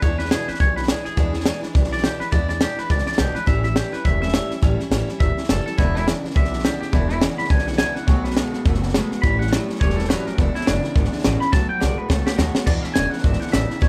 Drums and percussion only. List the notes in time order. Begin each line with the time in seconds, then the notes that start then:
0.02 kick, snare
0.19 snare
0.25 snare
0.31 snare, hi-hat pedal
0.48 snare
0.54 snare
0.60 kick, snare
0.77 snare
0.83 snare
0.88 snare, hi-hat pedal
1.05 snare
1.17 kick, snare
1.34 snare
1.40 snare
1.46 snare, hi-hat pedal
1.63 snare
1.75 kick, snare
1.84 snare
1.92 snare
1.98 snare
2.04 snare, hi-hat pedal
2.21 snare
2.32 kick, snare
2.49 snare
2.61 snare, hi-hat pedal
2.78 snare
2.90 kick, snare
2.98 snare
3.06 snare
3.12 snare
3.18 snare, hi-hat pedal
3.35 snare
3.47 kick, snare
3.64 snare
3.76 snare, hi-hat pedal
3.93 snare
4.05 kick, snare
4.22 snare
4.28 snare
4.34 snare, hi-hat pedal
4.51 snare
4.62 kick, snare
4.80 snare
4.92 snare, hi-hat pedal
5.09 snare
5.20 kick, snare
5.38 snare
5.44 snare
5.49 snare, hi-hat pedal
5.66 snare
5.78 kick, snare
5.96 snare
6.08 snare, hi-hat pedal
6.25 snare
6.30 snare
6.36 kick, snare
6.45 snare
6.53 snare
6.59 snare
6.65 snare, hi-hat pedal
6.82 snare
6.93 kick, snare
7.10 snare
7.22 snare, hi-hat pedal
7.38 snare
7.44 snare
7.50 kick, snare
7.58 snare
7.67 snare
7.73 snare
7.78 snare, hi-hat pedal
7.96 snare
8.07 kick, snare
8.24 snare
8.31 snare
8.37 snare, hi-hat pedal
8.53 snare
8.65 kick, snare
8.74 snare
8.83 snare
8.89 snare
8.94 snare, hi-hat pedal
9.12 snare
9.24 kick, snare
9.41 snare
9.47 snare
9.53 snare, hi-hat pedal
9.70 snare
9.75 snare
9.81 kick, snare
9.90 snare
9.99 snare
10.04 snare
10.10 snare, hi-hat pedal
10.27 snare
10.38 kick, snare
10.55 snare
10.61 snare
10.67 snare, hi-hat pedal
10.84 snare
10.96 kick, snare
11.04 snare
11.12 snare
11.18 snare
11.24 snare, hi-hat pedal
11.41 snare
11.53 kick, snare
11.82 snare, hi-hat pedal
12.10 kick, snare
12.27 snare
12.39 snare, hi-hat pedal
12.55 snare
12.67 kick, snare, crash
12.84 snare
12.96 snare, hi-hat pedal
13.13 snare
13.18 snare
13.24 kick, snare
13.33 snare
13.41 snare
13.47 snare
13.53 snare, hi-hat pedal
13.70 snare
13.82 kick, snare